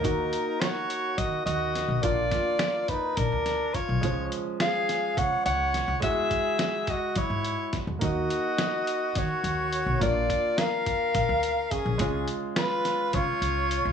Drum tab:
HH |xxxxxxx|xxxxxxx|xxxxxxx|xxxxxxx|
SD |--o---o|-oo--o-|--oo--o|--o---o|
BD |o---o--|oo-oo-o|o---o--|oo-oo-o|

HH |xxxxxxx|xxxxxxx|xxxxxxx|
SD |--o-o--|--o----|--oo---|
BD |o---o--|oo-oo-o|o---o--|